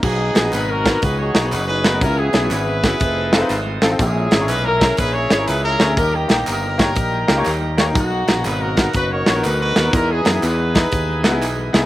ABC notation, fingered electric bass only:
X:1
M:4/4
L:1/8
Q:"Swing" 1/4=121
K:B
V:1 name="Fingered electric bass" clef=bass
B,,, A,,, G,,,2 C,, B,,, F,,,2 | C,, B,,, G,,,2 =F,,,2 G,,, =A,,, | A,,, G,,, B,,,2 A,,, G,,, C,, =D,, | D,, A,,, =G,,,2 A,,, C,, D,,2 |
B,,, A,,, G,,,2 F,,, A,,, =D,, ^D,, | E,, F,, E,,2 D,, C,, B,,, ^B,,, |]